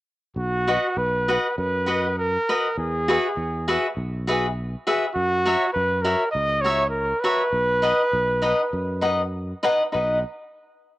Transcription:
0.36 fretless electric bass B1, trumpet F#4
0.67 cavaquinho F#4 B4 D#5 F#5
0.97 fretless electric bass B1, trumpet B4
1.28 cavaquinho F#4 B4 D#5 F#5
1.58 fretless electric bass F#2, trumpet B4
1.86 cavaquinho F#4 B4 D#5 F#5
2.18 trumpet A#4
2.49 cavaquinho F#4 B4 D#5 F#5
2.78 fretless electric bass E2, trumpet G#4
3.08 cavaquinho F#4 G#4 B4 E5
3.37 fretless electric bass E2
3.68 cavaquinho F#4 G#4 B4 E5
3.97 fretless electric bass B1
4.27 cavaquinho F#4 G#4 B4 E5
4.87 cavaquinho F#4 G#4 B4 E5
5.15 fretless electric bass F#2, trumpet F#4
5.45 cavaquinho F#4 A#4 C#5 E5
5.73 fretless electric bass F#2, trumpet B4
6.02 cavaquinho F#4 A#4 C#5 E5, trumpet A#4
6.31 fretless electric bass C#2, trumpet D#5
6.61 cavaquinho F#4 A#4, trumpet C#5
6.65 cavaquinho C#5 E5
6.90 trumpet A#4
7.20 cavaquinho F#4 A#4, trumpet B4
7.24 cavaquinho C#5 E5
7.53 fretless electric bass B1
7.82 cavaquinho D#4 B4 D#5 F#5
8.13 fretless electric bass B1
8.42 cavaquinho D#4 B4 D#5 F#5
8.73 fretless electric bass F#2
9.02 cavaquinho D#4 B4 D#5 F#5
9.63 cavaquinho D#4 B4 D#5 F#5
9.92 fretless electric bass B1, cavaquinho D#4 B4 D#5 F#5

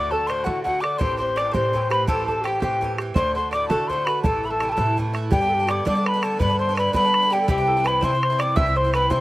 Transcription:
Already playing: upright bass D2, bouzouki A2 D3 A3, mandolin D5, flute D5, tin whistle D6
0.11 bouzouki D3 A3 F#4, mandolin A4, flute A4, tin whistle A5, bodhran
0.27 bouzouki A2 D3 A3 F#4, mandolin C5, flute C5, tin whistle C6, bodhran
0.44 bouzouki A2 D3 A3 F#4, upright bass D3, mandolin F#4, flute F#4, tin whistle F#5, bodhran
0.63 bouzouki A2 D3 A3, mandolin F#4, flute F#4, tin whistle F#5, bodhran
0.68 bouzouki F#4
0.80 bouzouki D3 A3 F#4, mandolin D5, tin whistle D6, bodhran
0.85 flute D5
0.98 upright bass A1, bouzouki A2 E3 C4 G4, mandolin C5, tin whistle C6, bodhran
1.02 flute C5
1.17 bouzouki C4 G4, mandolin C5, flute C5, tin whistle C6, bodhran
1.22 bouzouki E3
1.36 bouzouki A2 E3 C4 G4, mandolin D5, flute D5, tin whistle D6, bodhran
1.49 mandolin C5, tin whistle D6
1.53 upright bass A2, bouzouki A2 E3 C4 G4, flute C5, tin whistle C6, bodhran
1.73 bouzouki A2 E3 C4 G4, bodhran
1.90 bouzouki E3 C4 G4, mandolin B4, tin whistle B5, bodhran
2.07 upright bass A1, bouzouki A2 E3 C4 G4, mandolin A4, flute A4, tin whistle A5, bodhran
2.27 bouzouki C4 G4, mandolin A4, flute A4, tin whistle A5, bodhran
2.31 bouzouki E3
2.42 bouzouki A2 E3, flute F#4 G4, mandolin G4, tin whistle G5, bodhran
2.46 bouzouki C4 G4
2.60 upright bass A2, bouzouki A2 E3 C4 G4, mandolin G4, flute A4, tin whistle G5, bodhran
2.66 flute G4
2.81 bouzouki A2 E3 C4 G4, bodhran
2.98 bouzouki E3 C4 G4, bodhran
3.14 upright bass D2, bouzouki A2 D3 A3, mandolin C5, flute C5, tin whistle C6, bodhran
3.18 bouzouki F#4
3.35 bouzouki D3 A3 F#4, mandolin C5, tin whistle C6, bodhran
3.51 bouzouki A2 D3 A3, mandolin D5, flute D5, tin whistle D6, bodhran
3.55 bouzouki F#4
3.68 upright bass D3, bouzouki D3 A3 F#4, mandolin A4, flute A4, tin whistle A5, bodhran
3.72 bouzouki A2
3.88 bouzouki A2 D3, flute C5, mandolin C5, tin whistle C6, bodhran
3.92 bouzouki A3 F#4
4.05 bouzouki A3 F#4, flute B4, mandolin B4, tin whistle B5, bodhran
4.10 bouzouki D3
4.23 upright bass A1, bouzouki C3 E3 A3 E4, flute A4, mandolin A4, tin whistle A5, bodhran
4.43 bouzouki E3 A3 E4, tin whistle B5, bodhran
4.50 flute A4, mandolin A4, tin whistle A5
4.60 bouzouki C3 E3 A3 E4, bodhran
4.69 mandolin A4, flute A4, tin whistle G5 A5
4.77 upright bass A2, bouzouki C3 E3 A3 E4, bodhran
4.97 bouzouki C3 E3 A3 E4, bodhran
5.14 bouzouki E3 A3 E4, bodhran
5.31 bouzouki G2 D3 B3 D4, upright bass G2, mandolin G4, flute G4, tin whistle G5, bodhran
5.41 bouzouki D3 B3 D4
5.49 flute A4
5.54 flute G4
5.59 bouzouki D3 B3 D4
5.66 bouzouki G2 D3 B3, flute F#4, mandolin D5, bodhran
5.71 bouzouki D4, flute G4, tin whistle D6
5.85 bouzouki G2 D3 B3 D4, upright bass G3, mandolin D5, flute D5, tin whistle D6, bodhran
5.95 bouzouki D3 B3 D4
6.05 flute B4, mandolin B4, tin whistle B5, bodhran
6.14 bouzouki D3 B3 D4
6.22 bouzouki G2 D3 B3 D4, flute A4, tin whistle A5, bodhran
6.39 bouzouki G2 D3 B3 D4, upright bass G2, mandolin B4, flute B4, tin whistle B5, bodhran
6.50 bouzouki D3 B3 D4
6.59 mandolin C5, flute C5, tin whistle C6
6.69 bouzouki D3 B3 D4
6.75 bouzouki G2 D3, mandolin B4, flute B4, tin whistle B5, bodhran
6.79 bouzouki B3 D4
6.93 bouzouki G2 D3 B3 D4, upright bass G3, mandolin B4, flute B4, tin whistle B5, bodhran
7.04 bouzouki D3 B3 D4
7.14 bodhran
7.22 bouzouki D3 B3 D4
7.30 bouzouki G2 D3 B3 D4, mandolin G4, flute G4, tin whistle G5
7.41 flute A4
7.48 upright bass C2, bouzouki G2 E3 C4 E4, mandolin G4, flute G4, tin whistle G5, bodhran
7.58 bouzouki E3 C4 E4
7.67 mandolin A4
7.77 bouzouki E3 C4 E4
7.84 bouzouki G2 E3 C4, mandolin B4, flute B4, tin whistle B5, bodhran
7.89 bouzouki E4
8.01 bouzouki G2 E3 C4, upright bass C3, mandolin C5, flute C5, tin whistle C6, bodhran
8.05 bouzouki E4
8.12 bouzouki E3 C4 E4
8.22 flute C5, bodhran
8.30 bouzouki E3 C4 E4
8.39 bouzouki G2 E3 C4 E4, mandolin D5, flute D5, tin whistle D6, bodhran
8.56 upright bass C2, bouzouki G2 E3 C4 E4, mandolin E5, flute E5, tin whistle E6, bodhran
8.66 bouzouki E3 C4 E4
8.76 mandolin C5, flute C5, tin whistle C6
8.84 bouzouki E3 C4 E4
8.93 bouzouki G2 E3 C4 E4, flute B4, mandolin B4, tin whistle B5, bodhran
9.10 bouzouki G2 E3 C4 E4, upright bass C3, flute C5, mandolin C5, tin whistle C6, bodhran

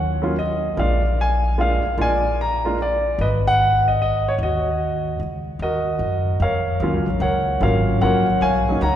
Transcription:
Already playing: upright bass D#2, grand piano C#5 F#5
0.22 grand piano F#3 A#3 C#4 F4
0.39 grand piano D#5
0.77 upright bass A#1, grand piano G#3 A#3 D4 F4 D5 F5
1.21 grand piano G#5
1.58 grand piano G#3 A#3 D4 F4 F5
1.84 muted upright bass stroke
1.97 upright bass A#1, grand piano G#3 A#3 D4 F4 G#5
2.02 grand piano D5
2.41 grand piano A#5
2.65 grand piano G#3 A#3 D4 F4
2.82 grand piano D5
3.19 upright bass G#1, grand piano B4 D#5
3.47 grand piano F#5
3.88 grand piano D#5
4.02 grand piano D#5
4.28 grand piano C#5
4.38 upright bass D#2
4.43 grand piano F#4 D#5
5.20 upright bass C#2
5.59 upright bass D#2, grand piano F#4 A#4 D#5
5.99 upright bass F#2
6.40 upright bass F2, grand piano A#4 C#5 F5
6.80 upright bass D#2, grand piano F#3 A#3 C#4 F4
6.93 upright bass C#2
7.07 upright bass A#1
7.20 upright bass C#2, grand piano A#4 C#5 F#5
7.61 upright bass G#1, grand piano F#3 A#3 C#4 F4 A#4 C#5 F5
8.01 upright bass A#1, grand piano F#3 A#3 C#4 F4 A#4 C#5 F#5
8.41 upright bass B1, grand piano C#5 F5 G#5
8.69 grand piano F#3 A#3 C#4 D#4
8.81 upright bass C#2, grand piano C#5 F#5 A#5

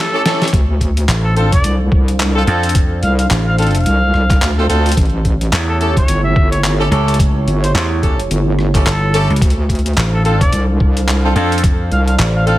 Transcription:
Already playing: analog synth pad A3 E4 G4 C#5, trumpet A4
0.13 horn section C#4 E4 G4 A4
0.25 horn section C#4 E4 G4 A4, snare, closed hi-hat
0.42 snare, closed hi-hat
0.48 closed hi-hat
0.53 wobble bass D2, analog synth pad D4 A4 C5 F5, kick, closed hi-hat
0.81 kick, closed hi-hat
0.97 closed hi-hat
1.08 slap bass A1, clap, closed hi-hat
1.24 trumpet A4
1.36 horn section C4 D4 F4 A4, trumpet A4, closed hi-hat
1.52 trumpet D5, kick, closed hi-hat
1.64 wobble bass C2, closed hi-hat
1.92 wobble bass C2, kick
2.08 closed hi-hat
2.20 clap, closed hi-hat
2.36 horn section C4 D4 F4 A4
2.47 slap bass F2, horn section C4 D4 F4 A4, closed hi-hat
2.63 closed hi-hat
2.69 closed hi-hat
2.75 kick, closed hi-hat
3.03 wobble bass C2, trumpet F5, closed hi-hat
3.19 trumpet F5, closed hi-hat
3.30 slap bass A1, clap, closed hi-hat
3.47 trumpet F5
3.58 horn section C4 D4 F4 A4, trumpet F5, closed hi-hat
3.62 closed hi-hat
3.67 closed hi-hat
3.71 trumpet F5, closed hi-hat
3.75 closed hi-hat
3.77 closed hi-hat
3.80 closed hi-hat
3.84 closed hi-hat
3.86 wobble bass C2, closed hi-hat
4.14 wobble bass C2, cross-stick
4.30 kick, clap, closed hi-hat
4.42 wobble bass D2, clap, closed hi-hat
4.58 horn section C4 D4 F4 A4
4.69 wobble bass D2, horn section C4 D4 F4 A4, closed hi-hat
4.86 closed hi-hat
4.89 closed hi-hat
4.92 closed hi-hat
4.95 wobble bass A1, analog synth pad A3 E4 G4 C#5, kick, closed hi-hat
4.97 closed hi-hat
5.01 closed hi-hat
5.05 closed hi-hat
5.09 closed hi-hat
5.25 kick, closed hi-hat
5.41 closed hi-hat
5.52 slap bass E2, clap, closed hi-hat
5.69 trumpet A4
5.80 horn section C#4 E4 G4 A4, trumpet A4, closed hi-hat
5.97 trumpet C#5, kick, closed hi-hat
6.08 wobble bass G1, closed hi-hat
6.24 trumpet E5
6.36 wobble bass G1, kick
6.51 trumpet C#5, closed hi-hat
6.64 trumpet C#5, clap, closed hi-hat
6.80 horn section C#4 E4 G4 A4
6.91 slap bass C#2, horn section C#4 E4 G4 A4, closed hi-hat
7.08 closed hi-hat
7.14 closed hi-hat
7.19 kick, closed hi-hat
7.47 wobble bass G1, closed hi-hat
7.63 trumpet C5, closed hi-hat
7.74 slap bass E2, trumpet C5, clap
8.03 horn section C#4 E4 G4 A4, kick, closed hi-hat
8.20 closed hi-hat
8.31 wobble bass G1, closed hi-hat
8.59 cross-stick
8.75 horn section C#4 E4 G4 A4, kick, clap, closed hi-hat
8.86 slap bass G1, trumpet A4, clap, closed hi-hat
9.14 horn section C#4 E4 G4 A4, closed hi-hat
9.30 slap bass C#2, closed hi-hat
9.36 closed hi-hat
9.41 wobble bass D2, analog synth pad D4 A4 C5 F5, kick, closed hi-hat
9.50 closed hi-hat
9.69 kick, closed hi-hat
9.75 closed hi-hat
9.79 closed hi-hat
9.86 closed hi-hat
9.88 closed hi-hat
9.93 slap bass A1, clap, closed hi-hat
9.97 closed hi-hat
10.13 trumpet A4
10.25 horn section C4 D4 F4 A4, trumpet A4, closed hi-hat
10.40 trumpet D5, kick, closed hi-hat
10.53 wobble bass C2, closed hi-hat
10.80 wobble bass C2, kick
10.97 closed hi-hat
11.08 clap, closed hi-hat
11.24 horn section C4 D4 F4 A4
11.36 slap bass F2, horn section C4 D4 F4 A4, closed hi-hat
11.52 closed hi-hat
11.58 closed hi-hat
11.64 kick, closed hi-hat
11.91 wobble bass C2, trumpet F5, closed hi-hat
12.08 trumpet F5, closed hi-hat
12.19 slap bass A1, clap, closed hi-hat
12.36 trumpet F5
12.47 horn section C4 D4 F4 A4, trumpet F5, closed hi-hat

